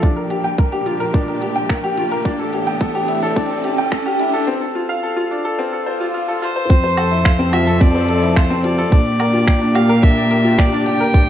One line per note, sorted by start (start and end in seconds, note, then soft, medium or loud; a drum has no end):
0.00 2.23 A#2 medium
0.00 2.21 F3 medium
0.00 0.16 D4 medium
0.00 2.23 D4 medium
0.00 4.43 G4 medium
0.00 kick medium
0.00 closed hi-hat soft
0.00 riser medium
0.16 0.30 A#4 medium
0.16 closed hi-hat soft
0.30 0.44 G4 medium
0.30 closed hi-hat medium
0.44 0.58 G5 medium
0.44 closed hi-hat soft
0.58 0.66 A#4 medium
0.58 kick loud
0.58 closed hi-hat soft
0.72 0.85 G4 medium
0.72 closed hi-hat soft
0.86 0.94 F4 medium
0.86 closed hi-hat medium
1.00 1.08 A#4 medium
1.00 closed hi-hat soft
1.14 1.27 D4 medium
1.14 kick loud
1.14 closed hi-hat soft
1.28 1.41 A#4 medium
1.28 closed hi-hat soft
1.42 1.55 G4 medium
1.42 closed hi-hat medium
1.56 1.69 G5 medium
1.56 closed hi-hat soft
1.70 1.78 A#4 medium
1.70 finger snap medium
1.70 kick medium
1.70 closed hi-hat soft
1.83 1.97 G4 loud
1.83 closed hi-hat soft
1.97 2.05 F4 medium
1.97 closed hi-hat medium
2.11 2.19 A#4 medium
2.11 closed hi-hat soft
2.25 4.45 A2 medium
2.25 4.45 E3 medium
2.25 4.45 D4 medium
2.25 2.39 D4 medium
2.25 kick loud
2.25 closed hi-hat soft
2.39 2.52 A4 medium
2.39 closed hi-hat soft
2.53 2.66 G4 medium
2.53 closed hi-hat medium
2.67 2.80 G5 medium
2.67 closed hi-hat soft
2.80 2.89 A4 medium
2.80 kick loud
2.80 closed hi-hat soft
2.94 3.08 G4 medium
2.94 closed hi-hat soft
3.08 3.16 E4 medium
3.08 closed hi-hat medium
3.22 3.30 A4 loud
3.22 closed hi-hat soft
3.36 3.50 D4 medium
3.36 kick loud
3.36 closed hi-hat soft
3.50 3.63 A4 medium
3.50 closed hi-hat soft
3.64 3.77 G4 medium
3.64 closed hi-hat medium
3.78 3.91 G5 loud
3.78 closed hi-hat soft
3.92 4.00 A4 medium
3.92 finger snap medium
3.92 kick loud
3.92 closed hi-hat soft
4.06 4.19 G4 loud
4.06 closed hi-hat soft
4.19 4.27 E4 medium
4.19 closed hi-hat medium
4.33 4.41 A4 medium
4.33 closed hi-hat soft
4.47 4.60 C4 loud
4.61 4.74 A4 medium
4.75 4.88 F4 medium
4.89 5.02 F5 loud
5.03 5.11 A4 medium
5.17 5.30 F4 loud
5.31 5.39 D4 medium
5.45 5.53 A4 loud
5.59 5.72 C4 medium
5.59 swell medium
5.72 5.86 A4 medium
5.86 6.00 C5 medium
6.00 6.13 F4 medium
6.14 6.22 F4 medium
6.28 6.41 A4 medium
6.42 6.55 F4 medium
6.42 7.55 C5 loud
6.56 6.69 C5 medium
6.70 8.89 F2 loud
6.70 8.90 F3 medium
6.70 6.83 C4 medium
6.70 8.90 C4 medium
6.70 8.90 A4 medium
6.70 kick loud
6.70 closed hi-hat soft
6.83 6.97 C5 medium
6.83 closed hi-hat soft
6.97 7.05 A4 medium
6.97 closed hi-hat medium
6.97 low woodblock medium
7.11 7.24 E4 medium
7.11 closed hi-hat soft
7.25 7.38 F5 medium
7.25 finger snap loud
7.25 kick loud
7.25 closed hi-hat soft
7.39 7.52 C4 medium
7.39 closed hi-hat soft
7.53 7.66 F4 medium
7.53 7.82 E5 loud
7.53 closed hi-hat medium
7.53 low woodblock medium
7.67 7.75 A4 loud
7.67 closed hi-hat soft
7.81 7.94 C4 medium
7.81 8.38 D5 loud
7.81 kick loud
7.81 closed hi-hat soft
7.95 8.08 C5 medium
7.95 closed hi-hat soft
8.08 8.17 A4 medium
8.08 closed hi-hat medium
8.22 8.36 E4 medium
8.22 closed hi-hat soft
8.36 8.64 C5 medium
8.36 8.49 F5 medium
8.36 finger snap loud
8.36 kick loud
8.36 closed hi-hat soft
8.50 8.63 C4 loud
8.50 closed hi-hat soft
8.64 8.77 F4 medium
8.64 9.76 D5 loud
8.64 closed hi-hat medium
8.78 8.86 A4 loud
8.78 closed hi-hat soft
8.92 11.11 A#2 loud
8.92 11.12 A#3 medium
8.92 9.05 D4 medium
8.92 11.29 D4 medium
8.92 11.29 G4 medium
8.92 kick loud
8.92 closed hi-hat soft
9.06 9.19 D5 medium
9.06 closed hi-hat soft
9.20 9.28 A#4 medium
9.20 closed hi-hat medium
9.20 low woodblock medium
9.33 9.47 F4 medium
9.33 closed hi-hat soft
9.47 9.61 G5 medium
9.47 finger snap loud
9.47 kick loud
9.47 closed hi-hat soft
9.61 9.75 D4 medium
9.61 closed hi-hat soft
9.75 9.88 G4 medium
9.75 10.04 F5 loud
9.75 closed hi-hat medium
9.75 low woodblock medium
9.89 9.97 A#4 loud
9.89 closed hi-hat soft
10.03 10.16 D4 medium
10.03 10.60 E5 loud
10.03 kick loud
10.03 closed hi-hat soft
10.17 10.30 D5 medium
10.17 closed hi-hat soft
10.31 10.39 A#4 medium
10.31 closed hi-hat medium
10.45 10.58 F4 medium
10.45 closed hi-hat soft
10.58 10.88 D5 loud
10.58 10.72 G5 medium
10.58 finger snap loud
10.58 kick loud
10.58 closed hi-hat soft
10.72 10.86 D4 loud
10.72 closed hi-hat soft
10.86 11.00 G4 medium
10.86 11.29 G5 loud
10.86 closed hi-hat medium
11.00 11.08 A#4 loud
11.00 closed hi-hat soft
11.14 11.29 A2 medium
11.14 11.29 A3 medium
11.14 11.27 D4 medium
11.14 kick loud
11.14 closed hi-hat soft